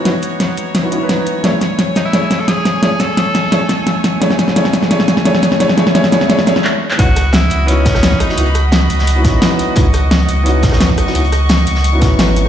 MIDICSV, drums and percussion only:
0, 0, Header, 1, 2, 480
1, 0, Start_track
1, 0, Key_signature, 4, "minor"
1, 0, Tempo, 346821
1, 75, Time_signature, 4, 2, 24, 8
1, 17281, End_track
2, 0, Start_track
2, 0, Title_t, "Drums"
2, 74, Note_on_c, 9, 38, 67
2, 74, Note_on_c, 9, 42, 86
2, 213, Note_off_c, 9, 38, 0
2, 213, Note_off_c, 9, 42, 0
2, 314, Note_on_c, 9, 42, 61
2, 314, Note_on_c, 9, 82, 57
2, 453, Note_off_c, 9, 42, 0
2, 453, Note_off_c, 9, 82, 0
2, 554, Note_on_c, 9, 38, 67
2, 554, Note_on_c, 9, 42, 84
2, 693, Note_off_c, 9, 38, 0
2, 693, Note_off_c, 9, 42, 0
2, 795, Note_on_c, 9, 42, 62
2, 795, Note_on_c, 9, 82, 57
2, 934, Note_off_c, 9, 42, 0
2, 934, Note_off_c, 9, 82, 0
2, 1034, Note_on_c, 9, 38, 68
2, 1034, Note_on_c, 9, 42, 87
2, 1034, Note_on_c, 9, 82, 26
2, 1173, Note_off_c, 9, 38, 0
2, 1173, Note_off_c, 9, 42, 0
2, 1173, Note_off_c, 9, 82, 0
2, 1273, Note_on_c, 9, 42, 62
2, 1273, Note_on_c, 9, 82, 57
2, 1412, Note_off_c, 9, 42, 0
2, 1412, Note_off_c, 9, 82, 0
2, 1511, Note_on_c, 9, 38, 73
2, 1511, Note_on_c, 9, 42, 89
2, 1650, Note_off_c, 9, 38, 0
2, 1650, Note_off_c, 9, 42, 0
2, 1752, Note_on_c, 9, 42, 62
2, 1752, Note_on_c, 9, 82, 58
2, 1891, Note_off_c, 9, 42, 0
2, 1891, Note_off_c, 9, 82, 0
2, 1992, Note_on_c, 9, 38, 73
2, 1992, Note_on_c, 9, 42, 85
2, 2130, Note_off_c, 9, 38, 0
2, 2130, Note_off_c, 9, 42, 0
2, 2234, Note_on_c, 9, 38, 74
2, 2234, Note_on_c, 9, 42, 63
2, 2234, Note_on_c, 9, 82, 58
2, 2373, Note_off_c, 9, 38, 0
2, 2373, Note_off_c, 9, 42, 0
2, 2373, Note_off_c, 9, 82, 0
2, 2474, Note_on_c, 9, 38, 74
2, 2474, Note_on_c, 9, 42, 86
2, 2612, Note_off_c, 9, 38, 0
2, 2612, Note_off_c, 9, 42, 0
2, 2714, Note_on_c, 9, 38, 77
2, 2714, Note_on_c, 9, 42, 63
2, 2714, Note_on_c, 9, 82, 61
2, 2853, Note_off_c, 9, 38, 0
2, 2853, Note_off_c, 9, 42, 0
2, 2853, Note_off_c, 9, 82, 0
2, 2954, Note_on_c, 9, 38, 77
2, 2954, Note_on_c, 9, 42, 88
2, 3092, Note_off_c, 9, 38, 0
2, 3092, Note_off_c, 9, 42, 0
2, 3193, Note_on_c, 9, 38, 78
2, 3193, Note_on_c, 9, 42, 62
2, 3193, Note_on_c, 9, 82, 58
2, 3331, Note_off_c, 9, 38, 0
2, 3331, Note_off_c, 9, 42, 0
2, 3331, Note_off_c, 9, 82, 0
2, 3433, Note_on_c, 9, 38, 80
2, 3433, Note_on_c, 9, 42, 90
2, 3571, Note_off_c, 9, 38, 0
2, 3571, Note_off_c, 9, 42, 0
2, 3673, Note_on_c, 9, 38, 82
2, 3673, Note_on_c, 9, 42, 66
2, 3673, Note_on_c, 9, 82, 60
2, 3812, Note_off_c, 9, 38, 0
2, 3812, Note_off_c, 9, 42, 0
2, 3812, Note_off_c, 9, 82, 0
2, 3912, Note_on_c, 9, 38, 83
2, 3912, Note_on_c, 9, 42, 90
2, 4051, Note_off_c, 9, 38, 0
2, 4051, Note_off_c, 9, 42, 0
2, 4150, Note_on_c, 9, 38, 83
2, 4150, Note_on_c, 9, 42, 66
2, 4150, Note_on_c, 9, 82, 63
2, 4288, Note_off_c, 9, 38, 0
2, 4288, Note_off_c, 9, 42, 0
2, 4288, Note_off_c, 9, 82, 0
2, 4392, Note_on_c, 9, 38, 84
2, 4392, Note_on_c, 9, 42, 91
2, 4531, Note_off_c, 9, 38, 0
2, 4531, Note_off_c, 9, 42, 0
2, 4634, Note_on_c, 9, 38, 85
2, 4634, Note_on_c, 9, 42, 65
2, 4634, Note_on_c, 9, 82, 63
2, 4772, Note_off_c, 9, 38, 0
2, 4772, Note_off_c, 9, 42, 0
2, 4772, Note_off_c, 9, 82, 0
2, 4873, Note_on_c, 9, 38, 83
2, 4873, Note_on_c, 9, 42, 91
2, 5011, Note_off_c, 9, 38, 0
2, 5011, Note_off_c, 9, 42, 0
2, 5111, Note_on_c, 9, 38, 90
2, 5111, Note_on_c, 9, 42, 67
2, 5111, Note_on_c, 9, 82, 61
2, 5249, Note_off_c, 9, 38, 0
2, 5249, Note_off_c, 9, 42, 0
2, 5249, Note_off_c, 9, 82, 0
2, 5352, Note_on_c, 9, 38, 88
2, 5352, Note_on_c, 9, 42, 92
2, 5490, Note_off_c, 9, 38, 0
2, 5490, Note_off_c, 9, 42, 0
2, 5593, Note_on_c, 9, 38, 95
2, 5593, Note_on_c, 9, 42, 65
2, 5593, Note_on_c, 9, 82, 64
2, 5731, Note_off_c, 9, 38, 0
2, 5731, Note_off_c, 9, 42, 0
2, 5731, Note_off_c, 9, 82, 0
2, 5835, Note_on_c, 9, 38, 94
2, 5835, Note_on_c, 9, 42, 98
2, 5959, Note_off_c, 9, 38, 0
2, 5959, Note_on_c, 9, 38, 84
2, 5973, Note_off_c, 9, 42, 0
2, 6075, Note_off_c, 9, 38, 0
2, 6075, Note_on_c, 9, 38, 94
2, 6075, Note_on_c, 9, 42, 70
2, 6075, Note_on_c, 9, 82, 63
2, 6199, Note_off_c, 9, 38, 0
2, 6199, Note_on_c, 9, 38, 83
2, 6213, Note_off_c, 9, 42, 0
2, 6213, Note_off_c, 9, 82, 0
2, 6314, Note_off_c, 9, 38, 0
2, 6314, Note_on_c, 9, 38, 93
2, 6314, Note_on_c, 9, 42, 98
2, 6438, Note_off_c, 9, 38, 0
2, 6438, Note_on_c, 9, 38, 88
2, 6453, Note_off_c, 9, 42, 0
2, 6553, Note_off_c, 9, 38, 0
2, 6553, Note_on_c, 9, 38, 98
2, 6553, Note_on_c, 9, 42, 69
2, 6553, Note_on_c, 9, 82, 65
2, 6679, Note_off_c, 9, 38, 0
2, 6679, Note_on_c, 9, 38, 84
2, 6691, Note_off_c, 9, 42, 0
2, 6691, Note_off_c, 9, 82, 0
2, 6792, Note_off_c, 9, 38, 0
2, 6792, Note_on_c, 9, 38, 97
2, 6792, Note_on_c, 9, 42, 95
2, 6918, Note_off_c, 9, 38, 0
2, 6918, Note_on_c, 9, 38, 88
2, 6931, Note_off_c, 9, 42, 0
2, 7032, Note_off_c, 9, 38, 0
2, 7032, Note_on_c, 9, 38, 99
2, 7032, Note_on_c, 9, 42, 68
2, 7032, Note_on_c, 9, 82, 61
2, 7158, Note_off_c, 9, 38, 0
2, 7158, Note_on_c, 9, 38, 85
2, 7171, Note_off_c, 9, 42, 0
2, 7171, Note_off_c, 9, 82, 0
2, 7272, Note_off_c, 9, 38, 0
2, 7272, Note_on_c, 9, 38, 98
2, 7272, Note_on_c, 9, 42, 97
2, 7399, Note_off_c, 9, 38, 0
2, 7399, Note_on_c, 9, 38, 90
2, 7410, Note_off_c, 9, 42, 0
2, 7513, Note_off_c, 9, 38, 0
2, 7513, Note_on_c, 9, 38, 100
2, 7513, Note_on_c, 9, 42, 71
2, 7513, Note_on_c, 9, 82, 65
2, 7638, Note_off_c, 9, 38, 0
2, 7638, Note_on_c, 9, 38, 92
2, 7652, Note_off_c, 9, 42, 0
2, 7652, Note_off_c, 9, 82, 0
2, 7754, Note_off_c, 9, 38, 0
2, 7754, Note_on_c, 9, 38, 105
2, 7754, Note_on_c, 9, 42, 100
2, 7881, Note_off_c, 9, 38, 0
2, 7881, Note_on_c, 9, 38, 93
2, 7893, Note_off_c, 9, 42, 0
2, 7994, Note_off_c, 9, 38, 0
2, 7994, Note_on_c, 9, 38, 106
2, 7994, Note_on_c, 9, 42, 69
2, 7994, Note_on_c, 9, 82, 62
2, 8121, Note_off_c, 9, 38, 0
2, 8121, Note_on_c, 9, 38, 92
2, 8133, Note_off_c, 9, 42, 0
2, 8133, Note_off_c, 9, 82, 0
2, 8235, Note_off_c, 9, 38, 0
2, 8235, Note_on_c, 9, 38, 107
2, 8235, Note_on_c, 9, 42, 99
2, 8360, Note_off_c, 9, 38, 0
2, 8360, Note_on_c, 9, 38, 97
2, 8360, Note_on_c, 9, 82, 30
2, 8373, Note_off_c, 9, 42, 0
2, 8475, Note_off_c, 9, 38, 0
2, 8475, Note_off_c, 9, 82, 0
2, 8475, Note_on_c, 9, 38, 108
2, 8475, Note_on_c, 9, 42, 69
2, 8475, Note_on_c, 9, 82, 63
2, 8599, Note_off_c, 9, 38, 0
2, 8599, Note_on_c, 9, 38, 95
2, 8614, Note_off_c, 9, 42, 0
2, 8614, Note_off_c, 9, 82, 0
2, 8714, Note_off_c, 9, 38, 0
2, 8714, Note_on_c, 9, 38, 108
2, 8714, Note_on_c, 9, 42, 97
2, 8714, Note_on_c, 9, 82, 29
2, 8839, Note_off_c, 9, 38, 0
2, 8839, Note_on_c, 9, 38, 97
2, 8852, Note_off_c, 9, 42, 0
2, 8852, Note_off_c, 9, 82, 0
2, 8956, Note_off_c, 9, 38, 0
2, 8956, Note_on_c, 9, 38, 108
2, 8956, Note_on_c, 9, 42, 70
2, 8956, Note_on_c, 9, 82, 64
2, 9081, Note_off_c, 9, 38, 0
2, 9081, Note_on_c, 9, 38, 92
2, 9095, Note_off_c, 9, 42, 0
2, 9095, Note_off_c, 9, 82, 0
2, 9195, Note_on_c, 9, 39, 113
2, 9220, Note_off_c, 9, 38, 0
2, 9333, Note_off_c, 9, 39, 0
2, 9561, Note_on_c, 9, 39, 81
2, 9674, Note_on_c, 9, 36, 118
2, 9674, Note_on_c, 9, 42, 98
2, 9677, Note_off_c, 9, 42, 0
2, 9677, Note_on_c, 9, 42, 82
2, 9699, Note_off_c, 9, 39, 0
2, 9812, Note_off_c, 9, 36, 0
2, 9815, Note_off_c, 9, 42, 0
2, 9912, Note_on_c, 9, 42, 71
2, 9916, Note_off_c, 9, 42, 0
2, 9916, Note_on_c, 9, 37, 49
2, 9916, Note_on_c, 9, 42, 69
2, 9916, Note_on_c, 9, 82, 61
2, 10054, Note_off_c, 9, 37, 0
2, 10054, Note_off_c, 9, 42, 0
2, 10054, Note_off_c, 9, 82, 0
2, 10141, Note_on_c, 9, 38, 126
2, 10147, Note_on_c, 9, 42, 82
2, 10155, Note_off_c, 9, 38, 0
2, 10155, Note_off_c, 9, 42, 0
2, 10155, Note_on_c, 9, 38, 122
2, 10155, Note_on_c, 9, 42, 97
2, 10293, Note_off_c, 9, 38, 0
2, 10293, Note_off_c, 9, 42, 0
2, 10377, Note_on_c, 9, 42, 71
2, 10394, Note_off_c, 9, 42, 0
2, 10394, Note_on_c, 9, 42, 72
2, 10394, Note_on_c, 9, 82, 60
2, 10532, Note_off_c, 9, 42, 0
2, 10532, Note_off_c, 9, 82, 0
2, 10632, Note_on_c, 9, 42, 88
2, 10634, Note_off_c, 9, 42, 0
2, 10634, Note_on_c, 9, 42, 95
2, 10772, Note_off_c, 9, 42, 0
2, 10871, Note_on_c, 9, 38, 60
2, 10874, Note_on_c, 9, 36, 110
2, 10875, Note_on_c, 9, 42, 70
2, 10875, Note_on_c, 9, 82, 60
2, 10878, Note_off_c, 9, 42, 0
2, 10878, Note_on_c, 9, 42, 65
2, 11000, Note_on_c, 9, 37, 49
2, 11001, Note_off_c, 9, 38, 0
2, 11001, Note_on_c, 9, 38, 56
2, 11012, Note_off_c, 9, 36, 0
2, 11013, Note_off_c, 9, 82, 0
2, 11016, Note_off_c, 9, 42, 0
2, 11113, Note_off_c, 9, 38, 0
2, 11113, Note_on_c, 9, 38, 109
2, 11114, Note_off_c, 9, 38, 0
2, 11114, Note_on_c, 9, 38, 117
2, 11114, Note_on_c, 9, 42, 100
2, 11116, Note_off_c, 9, 42, 0
2, 11116, Note_on_c, 9, 42, 92
2, 11138, Note_off_c, 9, 37, 0
2, 11240, Note_on_c, 9, 36, 64
2, 11252, Note_off_c, 9, 38, 0
2, 11254, Note_off_c, 9, 42, 0
2, 11352, Note_on_c, 9, 37, 59
2, 11352, Note_on_c, 9, 42, 72
2, 11352, Note_on_c, 9, 82, 61
2, 11355, Note_off_c, 9, 42, 0
2, 11355, Note_on_c, 9, 42, 68
2, 11378, Note_off_c, 9, 36, 0
2, 11480, Note_on_c, 9, 38, 41
2, 11490, Note_off_c, 9, 37, 0
2, 11490, Note_off_c, 9, 82, 0
2, 11494, Note_off_c, 9, 42, 0
2, 11587, Note_on_c, 9, 42, 83
2, 11593, Note_off_c, 9, 42, 0
2, 11593, Note_on_c, 9, 42, 93
2, 11619, Note_off_c, 9, 38, 0
2, 11707, Note_off_c, 9, 42, 0
2, 11707, Note_on_c, 9, 42, 45
2, 11830, Note_off_c, 9, 42, 0
2, 11830, Note_on_c, 9, 42, 64
2, 11832, Note_off_c, 9, 42, 0
2, 11832, Note_on_c, 9, 37, 50
2, 11832, Note_on_c, 9, 42, 68
2, 11832, Note_on_c, 9, 82, 59
2, 11971, Note_off_c, 9, 37, 0
2, 11971, Note_off_c, 9, 42, 0
2, 11971, Note_off_c, 9, 82, 0
2, 12068, Note_on_c, 9, 38, 113
2, 12075, Note_off_c, 9, 38, 0
2, 12075, Note_on_c, 9, 38, 123
2, 12075, Note_on_c, 9, 42, 95
2, 12078, Note_off_c, 9, 42, 0
2, 12078, Note_on_c, 9, 42, 94
2, 12213, Note_off_c, 9, 38, 0
2, 12217, Note_off_c, 9, 42, 0
2, 12317, Note_on_c, 9, 42, 68
2, 12317, Note_on_c, 9, 82, 59
2, 12326, Note_off_c, 9, 42, 0
2, 12326, Note_on_c, 9, 42, 62
2, 12441, Note_on_c, 9, 38, 52
2, 12455, Note_off_c, 9, 82, 0
2, 12464, Note_off_c, 9, 42, 0
2, 12557, Note_on_c, 9, 42, 94
2, 12558, Note_off_c, 9, 42, 0
2, 12558, Note_on_c, 9, 42, 93
2, 12580, Note_off_c, 9, 38, 0
2, 12696, Note_off_c, 9, 42, 0
2, 12797, Note_on_c, 9, 36, 110
2, 12797, Note_on_c, 9, 38, 46
2, 12797, Note_on_c, 9, 42, 69
2, 12797, Note_on_c, 9, 82, 57
2, 12798, Note_off_c, 9, 42, 0
2, 12798, Note_on_c, 9, 42, 66
2, 12935, Note_off_c, 9, 36, 0
2, 12935, Note_off_c, 9, 38, 0
2, 12935, Note_off_c, 9, 82, 0
2, 12936, Note_off_c, 9, 42, 0
2, 13034, Note_on_c, 9, 38, 101
2, 13034, Note_on_c, 9, 42, 86
2, 13036, Note_off_c, 9, 38, 0
2, 13036, Note_off_c, 9, 42, 0
2, 13036, Note_on_c, 9, 38, 124
2, 13036, Note_on_c, 9, 42, 94
2, 13160, Note_on_c, 9, 37, 38
2, 13174, Note_off_c, 9, 38, 0
2, 13174, Note_off_c, 9, 42, 0
2, 13272, Note_on_c, 9, 42, 72
2, 13277, Note_off_c, 9, 42, 0
2, 13277, Note_on_c, 9, 42, 69
2, 13277, Note_on_c, 9, 82, 59
2, 13298, Note_off_c, 9, 37, 0
2, 13415, Note_off_c, 9, 42, 0
2, 13415, Note_off_c, 9, 82, 0
2, 13503, Note_on_c, 9, 42, 100
2, 13514, Note_off_c, 9, 42, 0
2, 13514, Note_on_c, 9, 42, 89
2, 13517, Note_on_c, 9, 36, 127
2, 13652, Note_off_c, 9, 42, 0
2, 13656, Note_off_c, 9, 36, 0
2, 13755, Note_on_c, 9, 37, 49
2, 13755, Note_on_c, 9, 42, 63
2, 13755, Note_on_c, 9, 82, 58
2, 13763, Note_off_c, 9, 42, 0
2, 13763, Note_on_c, 9, 42, 73
2, 13893, Note_off_c, 9, 37, 0
2, 13893, Note_off_c, 9, 82, 0
2, 13901, Note_off_c, 9, 42, 0
2, 13993, Note_on_c, 9, 38, 106
2, 13994, Note_off_c, 9, 38, 0
2, 13994, Note_on_c, 9, 38, 127
2, 13994, Note_on_c, 9, 42, 92
2, 13997, Note_off_c, 9, 42, 0
2, 13997, Note_on_c, 9, 42, 93
2, 14133, Note_off_c, 9, 38, 0
2, 14135, Note_off_c, 9, 42, 0
2, 14236, Note_on_c, 9, 42, 64
2, 14236, Note_on_c, 9, 82, 57
2, 14247, Note_off_c, 9, 42, 0
2, 14247, Note_on_c, 9, 42, 61
2, 14374, Note_off_c, 9, 82, 0
2, 14386, Note_off_c, 9, 42, 0
2, 14476, Note_on_c, 9, 42, 92
2, 14482, Note_off_c, 9, 42, 0
2, 14482, Note_on_c, 9, 42, 84
2, 14621, Note_off_c, 9, 42, 0
2, 14707, Note_on_c, 9, 42, 68
2, 14715, Note_off_c, 9, 42, 0
2, 14715, Note_on_c, 9, 42, 65
2, 14715, Note_on_c, 9, 82, 56
2, 14716, Note_on_c, 9, 36, 114
2, 14718, Note_on_c, 9, 38, 60
2, 14839, Note_on_c, 9, 37, 49
2, 14846, Note_off_c, 9, 38, 0
2, 14846, Note_on_c, 9, 38, 59
2, 14853, Note_off_c, 9, 42, 0
2, 14853, Note_off_c, 9, 82, 0
2, 14854, Note_off_c, 9, 36, 0
2, 14951, Note_on_c, 9, 42, 85
2, 14955, Note_off_c, 9, 38, 0
2, 14955, Note_off_c, 9, 42, 0
2, 14955, Note_on_c, 9, 38, 115
2, 14955, Note_on_c, 9, 42, 92
2, 14978, Note_off_c, 9, 37, 0
2, 15080, Note_on_c, 9, 36, 64
2, 15093, Note_off_c, 9, 42, 0
2, 15094, Note_off_c, 9, 38, 0
2, 15194, Note_on_c, 9, 37, 58
2, 15194, Note_on_c, 9, 42, 66
2, 15194, Note_on_c, 9, 82, 59
2, 15196, Note_off_c, 9, 42, 0
2, 15196, Note_on_c, 9, 42, 68
2, 15218, Note_off_c, 9, 36, 0
2, 15324, Note_on_c, 9, 38, 47
2, 15332, Note_off_c, 9, 37, 0
2, 15332, Note_off_c, 9, 82, 0
2, 15334, Note_off_c, 9, 42, 0
2, 15431, Note_on_c, 9, 42, 87
2, 15441, Note_off_c, 9, 42, 0
2, 15441, Note_on_c, 9, 42, 85
2, 15462, Note_off_c, 9, 38, 0
2, 15564, Note_off_c, 9, 42, 0
2, 15564, Note_on_c, 9, 42, 42
2, 15673, Note_off_c, 9, 42, 0
2, 15673, Note_on_c, 9, 37, 48
2, 15673, Note_on_c, 9, 42, 63
2, 15673, Note_on_c, 9, 82, 57
2, 15686, Note_off_c, 9, 42, 0
2, 15686, Note_on_c, 9, 42, 67
2, 15811, Note_off_c, 9, 37, 0
2, 15811, Note_off_c, 9, 82, 0
2, 15824, Note_off_c, 9, 42, 0
2, 15903, Note_on_c, 9, 42, 97
2, 15911, Note_on_c, 9, 38, 117
2, 15912, Note_off_c, 9, 38, 0
2, 15912, Note_off_c, 9, 42, 0
2, 15912, Note_on_c, 9, 38, 126
2, 15912, Note_on_c, 9, 42, 87
2, 16037, Note_on_c, 9, 82, 28
2, 16051, Note_off_c, 9, 38, 0
2, 16051, Note_off_c, 9, 42, 0
2, 16150, Note_off_c, 9, 82, 0
2, 16150, Note_on_c, 9, 42, 66
2, 16150, Note_on_c, 9, 82, 58
2, 16162, Note_off_c, 9, 42, 0
2, 16162, Note_on_c, 9, 42, 66
2, 16265, Note_on_c, 9, 38, 46
2, 16288, Note_off_c, 9, 82, 0
2, 16300, Note_off_c, 9, 42, 0
2, 16390, Note_on_c, 9, 42, 83
2, 16392, Note_off_c, 9, 42, 0
2, 16392, Note_on_c, 9, 42, 91
2, 16403, Note_off_c, 9, 38, 0
2, 16530, Note_off_c, 9, 42, 0
2, 16630, Note_on_c, 9, 42, 64
2, 16630, Note_on_c, 9, 82, 58
2, 16632, Note_off_c, 9, 42, 0
2, 16632, Note_on_c, 9, 42, 69
2, 16634, Note_on_c, 9, 36, 110
2, 16641, Note_on_c, 9, 38, 50
2, 16769, Note_off_c, 9, 82, 0
2, 16770, Note_off_c, 9, 42, 0
2, 16772, Note_off_c, 9, 36, 0
2, 16780, Note_off_c, 9, 38, 0
2, 16868, Note_on_c, 9, 42, 78
2, 16871, Note_off_c, 9, 42, 0
2, 16871, Note_on_c, 9, 38, 125
2, 16871, Note_on_c, 9, 42, 88
2, 16873, Note_off_c, 9, 38, 0
2, 16873, Note_on_c, 9, 38, 114
2, 16998, Note_on_c, 9, 37, 35
2, 17010, Note_off_c, 9, 42, 0
2, 17011, Note_off_c, 9, 38, 0
2, 17113, Note_on_c, 9, 42, 67
2, 17113, Note_on_c, 9, 82, 59
2, 17116, Note_off_c, 9, 42, 0
2, 17116, Note_on_c, 9, 42, 68
2, 17136, Note_off_c, 9, 37, 0
2, 17238, Note_on_c, 9, 37, 32
2, 17251, Note_off_c, 9, 82, 0
2, 17255, Note_off_c, 9, 42, 0
2, 17281, Note_off_c, 9, 37, 0
2, 17281, End_track
0, 0, End_of_file